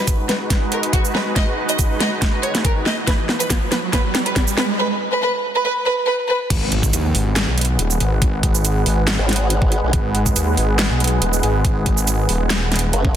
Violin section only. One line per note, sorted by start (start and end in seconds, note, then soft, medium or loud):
0.29 0.37 B4 medium
0.72 0.80 A#4 medium
0.93 1.01 F#4 medium
1.15 1.23 B4 medium
1.36 1.44 D#5 medium
1.69 1.77 D#5 medium
2.00 2.08 D#5 medium
2.43 2.51 C#5 medium
2.64 2.72 A#4 medium
2.86 2.94 D#5 medium
3.07 3.15 B4 medium
3.40 3.48 B4 medium
3.72 3.80 B4 medium
3.93 4.01 B4 medium
4.26 4.34 B4 medium
4.57 4.65 B4 medium
4.79 4.87 B4 medium
5.12 5.20 B4 loud
5.22 5.30 B4 loud
5.55 5.63 B4 medium
5.64 5.72 B4 loud
5.86 5.94 B4 loud
6.07 6.15 B4 loud
6.29 6.37 B4 loud